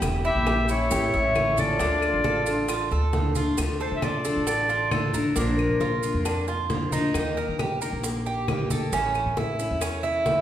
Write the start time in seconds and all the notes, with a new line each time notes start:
Already playing: G4
0.02 E1 E3 G3 E4, high bongo, high conga, claves, maracas
0.24 E4 G4 E5, high bongo, high conga, maracas
0.35 A#1
0.46 G4, muted steel-string acoustic guitar stroke, high bongo, high conga, claves, maracas
0.68 G3 C#4 E4 C#5, high bongo, high conga, maracas
0.91 A1 G4, high bongo, high conga, maracas
1.13 A1 E5, high conga, maracas
1.35 E3 G3 C#4 E4, high bongo, low bongo, high conga, claves, maracas
1.57 G3 C#4 E4 F4 A4 D5, high bongo, high conga, maracas
1.79 D2 D3 A3 D4 F4, high bongo, maracas
2.02 high bongo, high conga, claves, maracas
2.14 A1
2.24 A4, muted steel-string acoustic guitar stroke, high bongo, high conga, maracas
2.46 A3 D4 F4, high bongo, high conga, maracas
2.68 F4, high bongo, high conga, claves, maracas
2.91 D2 A4, high conga, maracas
3.13 D3 A3 D4 F4, high bongo, low bongo, high conga, maracas
3.35 A3 D4 F4, high bongo, high conga, maracas
3.57 D2 D3 A3 D4 F4, high bongo, high conga, claves, maracas
3.80 A4 C5, high bongo, high conga, maracas
3.91 D3
3.96 E5
4.02 F4 D5, muted steel-string acoustic guitar stroke, high bongo, high conga, claves, maracas
4.25 A3 D4 F4 A4, high bongo, high conga, maracas
4.36 A1
4.47 D5, high bongo, high conga, maracas
4.69 F4, high conga, maracas
4.91 D3 A3 D4 F4 A4, high bongo, low bongo, high conga, claves, maracas
5.13 A3 D4 F4 A#4, high bongo, high conga, maracas
5.36 A#1 F3 A#3 D4 F4 A#4, high bongo, maracas
5.58 high bongo, high conga, claves, maracas
5.69 A#2
5.80 F4, muted steel-string acoustic guitar stroke, high bongo, high conga, maracas
6.03 A#3 D4 F4, high bongo, high conga, maracas
6.14 F2
6.25 D4, high bongo, high conga, claves, maracas
6.48 F4, high conga, maracas
6.70 F3 A#3 D4 F4, high bongo, low bongo, high conga, maracas
6.92 A#3 D4 D#4 F4, high bongo, high conga, maracas
7.14 D#2 D#3 A#3 D#4 G4, high bongo, high conga, claves, maracas
7.37 A#4, high bongo, high conga, maracas
7.49 D#3
7.59 G4, muted steel-string acoustic guitar stroke, high bongo, high conga, claves, maracas
7.81 A#3 D#4 G4 A#4, high bongo, high conga, maracas
7.93 A#1
8.04 high bongo, high conga, maracas
8.26 G4, high conga, maracas
8.48 D#3 A#3 D#4 G4, high bongo, low bongo, high conga, claves, maracas
8.70 A#3 D#4 G4 A4, high bongo, high conga, maracas
8.92 A1 E3 A3 C#4 E4, high bongo, maracas
9.15 high bongo, high conga, claves, maracas
9.26 A2
9.37 E4, muted steel-string acoustic guitar stroke, high bongo, high conga, maracas
9.59 A3 C#4 E4, high bongo, high conga, maracas
9.71 E2
9.81 C#4, high bongo, high conga, claves, maracas
10.03 E4, high conga, maracas
10.25 E3 A3 C#4 E4, high bongo, low bongo, high conga, maracas